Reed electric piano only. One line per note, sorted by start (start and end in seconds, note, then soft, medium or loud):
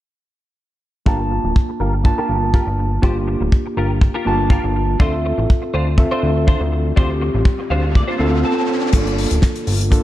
1.06 2.02 A#3 medium
1.06 2.02 D4 medium
1.06 2.02 F4 medium
1.06 2.03 A5 medium
2.04 3.00 A#3 medium
2.04 3.00 D4 medium
2.04 3.01 F4 medium
2.04 3.01 A5 medium
3.02 4.23 A#3 medium
3.02 4.23 D4 medium
3.02 4.23 F4 medium
3.02 4.24 G4 medium
4.25 4.97 A#3 medium
4.25 4.97 D4 medium
4.25 4.97 F4 medium
4.25 4.98 A5 loud
4.99 5.95 C4 medium
4.99 5.96 F4 medium
4.99 5.96 A4 medium
4.99 5.96 E5 medium
5.97 6.93 C4 medium
5.97 6.94 F4 medium
5.97 6.94 A4 medium
5.97 6.94 E5 medium
6.96 8.16 C4 medium
6.96 8.17 F4 medium
6.96 8.17 G4 medium
8.18 8.90 C4 medium
8.18 8.91 F4 medium
8.18 8.91 A4 medium
8.92 9.88 A#3 medium
8.92 9.89 D4 medium
8.92 9.89 F4 medium
8.92 9.90 A4 medium
9.90 10.03 A#3 medium
9.90 10.03 D4 medium
9.90 10.03 F4 medium
9.90 10.03 A4 medium